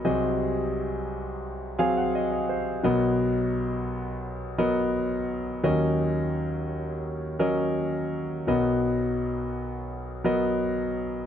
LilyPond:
<<
  \new Staff \with { instrumentName = "Grand piano" } { \time 4/4 \key ces \lydian \tempo 4 = 85 << { r2 r8 aes''16 ges''16 ees''16 ees''16 c''8 | r1 | r1 | r1 | } \\ { <ges c' aes' ees''>4. r4 <ges c' aes' f''>4 r8 | <fis b ais' dis''>4. r4 <fis b ais' dis''>4 r8 | <ges des' bes' ees''>4. r4 <ges des' bes' ees''>4 r8 | <fis b ais' dis''>4. r4 <fis b ais' dis''>4 r8 | } >> }
  \new Staff \with { instrumentName = "Grand piano" } { \clef bass \time 4/4 \key ces \lydian <c, c>1 | <b,, b,>1 | <ees, ees>1 | <b,, b,>1 | }
>>